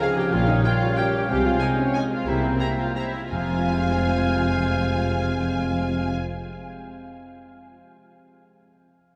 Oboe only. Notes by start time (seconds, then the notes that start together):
0.01 F5
0.32 F5
0.63 F5
0.97 F5
1.30 F5
2.28 G5
2.61 G5
2.96 G5
3.31 F5